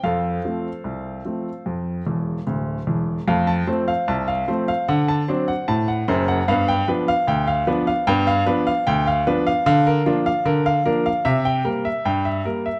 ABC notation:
X:1
M:2/4
L:1/16
Q:1/4=75
K:F
V:1 name="Upright piano"
[Acf]8- | [Acf]4 z4 | f a c f a f c f | ^f a c f a f c f |
f g =B f g f B f | g f =B f g f B f | [K:Bb] f B F f B f B f | =e g B e g e B e |]
V:2 name="Upright piano" clef=bass
F,,2 [F,A,C]2 C,,2 [F,A,C]2 | F,,2 [E,,,E,,]2 [D,,,D,,]2 [E,,,E,,]2 | [F,,A,]2 [F,A,C]2 C,,2 [F,A,C]2 | D,2 [^F,CD]2 A,,2 [^F,,,^F,,]2 |
[G,,=B,]2 [F,B,D]2 D,,2 [F,B,D]2 | [G,,=B,]2 [F,B,D]2 D,,2 [F,B,D]2 | [K:Bb] D,2 [F,B,D]2 D,2 [F,B,D]2 | C,2 [G,B,]2 G,,2 [G,B,]2 |]